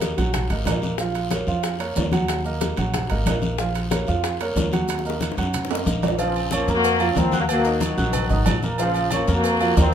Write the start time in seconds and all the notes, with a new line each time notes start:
Already playing: D#2 A#3 A#4 D#5
0.01 high bongo, high conga, high timbale, low timbale, short guiro, maracas
0.17 A#1 F#3 F#4 F#5, high timbale, short guiro, maracas
0.34 high bongo, high conga, low conga, high timbale, long guiro, maracas
0.50 G#1 A#3 A#4 D#5, high bongo, high conga, high timbale, maracas
0.65 A#1 A#3 A#4 D#5, high bongo, low bongo, high conga, high timbale, low timbale, short guiro, maracas
0.82 high bongo, high conga, short guiro, maracas
0.98 F3 F4 F5, high bongo, high conga, long guiro, maracas
1.15 high bongo, high conga, high timbale, maracas
1.31 A#3 A#4 C#5, high bongo, high conga, high timbale, low timbale, short guiro, maracas
1.47 F2 F3 F4 F5, high conga, short guiro, maracas
1.63 high bongo, high conga, high timbale, long guiro, maracas
1.79 A#3 A#4 C#5, high bongo, high conga, high timbale, maracas
1.96 D#2, high bongo, low bongo, high conga, low timbale, short guiro, maracas
2.12 F#3 F#4 F#5, high bongo, high conga, high timbale, short guiro, maracas
2.28 high bongo, high conga, high timbale, long guiro, maracas
2.45 A#3 A#4 D#5, high bongo, high conga, maracas
2.61 high bongo, high conga, high timbale, low timbale, short guiro, maracas
2.77 A#1 F#3 F#4 F#5, high conga, high timbale, short guiro, maracas
2.94 high bongo, high conga, low conga, high timbale, long guiro, maracas
3.10 G#1 A#3 A#4 D#5, high bongo, high conga, high timbale, maracas
3.26 A#1 A#3 A#4 D#5, high bongo, low bongo, high conga, high timbale, low timbale, short guiro, maracas
3.42 high bongo, high conga, short guiro, maracas
3.58 F3 F4 F5, high bongo, long guiro, maracas
3.75 high bongo, high conga, high timbale, maracas
3.91 A#3 A#4 C#5, high bongo, high conga, high timbale, low timbale, short guiro, maracas
4.07 F2 F3 F4 F5, high conga, short guiro, maracas
4.24 high bongo, high conga, high timbale, long guiro, maracas
4.40 A#3 A#4 C#5, high bongo, high conga, high timbale, maracas
4.56 D#2, high bongo, low bongo, high conga, low timbale, short guiro, maracas
4.72 F#3 F#4 F#5, high bongo, high conga, high timbale, short guiro, maracas
4.88 high bongo, high conga, high timbale, long guiro, maracas
4.99 high bongo
5.05 A#3 A#4 D#5, high conga, maracas
5.10 high bongo
5.21 high conga, high timbale, low timbale, short guiro, maracas
5.32 low bongo
5.37 F#2 F#3 F#4 F#5, high conga, high timbale, short guiro, maracas
5.43 high bongo
5.53 low bongo, high conga, low conga, high timbale, long guiro, maracas
5.65 low bongo
5.70 A#3 A#4 D#5, high conga, high timbale, maracas
5.75 low bongo
5.86 A#1 A#3 A#4 D#5, low bongo, high conga, short guiro, maracas
6.03 high conga, low timbale, short guiro, maracas
6.08 low bongo
6.19 C#3 F3 F4 F5, cowbell, high conga, low agogo, long guiro, maracas
6.35 high conga, low agogo, maracas
6.51 F3 A#3 C#4 C#5 C#6, cowbell, high conga, low timbale, low agogo, short guiro, maracas
6.68 F2 A#3 A#4 A#5, cowbell, high conga, short guiro, maracas
6.73 A#3 F#4
6.83 cowbell, high conga, low agogo, long guiro, maracas
7.00 F3 F4 F5, high conga, low agogo, maracas
7.11 C#4
7.15 D#2 F3 A#3 C4 A#4 A#5, cowbell, high conga, low timbale, short guiro, maracas
7.32 F#4 F#5 F#6, cowbell, high conga, short guiro, maracas
7.39 F#3 A#3
7.49 F#3 A#3, cowbell, low agogo, maracas
7.65 D#4 D#5 D#6, cowbell, high conga, maracas
7.81 D#3 F#3, cowbell, high conga, low timbale, low agogo, short guiro, maracas
7.97 A#1 F#4 F#5 F#6, high conga, short guiro, maracas
8.13 cowbell, high conga, low conga, low agogo, long guiro, maracas
8.30 G#1 D#4 D#5 D#6, high conga, low conga, maracas
8.46 A#1, cowbell, high conga, low timbale, low agogo, short guiro, maracas
8.62 A#3 A#4 A#5, high conga, short guiro, maracas
8.78 C#3 F3 F4 F5, cowbell, high conga, low agogo, long guiro, maracas
8.94 high conga, low agogo, maracas
9.11 F3 A#3 C#4 C#5 C#6, cowbell, high conga, low timbale, low agogo, short guiro, maracas
9.27 F2 A#3 A#4 A#5, cowbell, high conga, short guiro, maracas
9.34 A#3 F#4
9.44 cowbell, high conga, low agogo, long guiro, maracas
9.61 F3 F4 F5, high conga, low agogo, maracas
9.77 D#2 F3 A#3 C4 A#4 A#5, cowbell, high conga, low timbale, short guiro, maracas